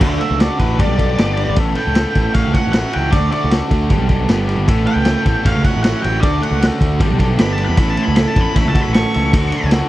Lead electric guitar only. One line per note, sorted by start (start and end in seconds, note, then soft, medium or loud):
0.00 0.19 F#4 loud
0.00 0.39 E5 medium
0.39 0.59 D5 medium
0.59 0.80 B4 medium
0.80 1.55 D5 medium
1.76 2.33 G5 medium
2.34 2.54 F5 medium
2.54 2.71 F#5 medium
2.72 2.93 F#5 medium
2.93 3.12 G5 medium
3.11 3.30 D5 medium
3.32 3.51 D5 medium
4.87 5.43 G5 medium
5.47 5.64 F5 medium
5.65 5.82 F#5 medium
5.83 6.02 F#5 loud
6.02 6.22 G5 medium
6.21 6.41 D5 medium
6.43 6.61 F#5 medium
7.39 7.52 B5 medium
7.52 7.64 A5 medium
7.65 7.76 B5 medium
7.77 7.90 B5 medium
7.90 8.03 A5 medium
8.03 8.15 B5 medium
8.17 8.28 B5 medium
8.28 8.40 A5 medium
8.40 8.54 B5 medium
8.56 8.68 B5 loud
8.69 8.81 A5 loud
8.81 8.93 B5 medium
8.93 9.69 C#6 loud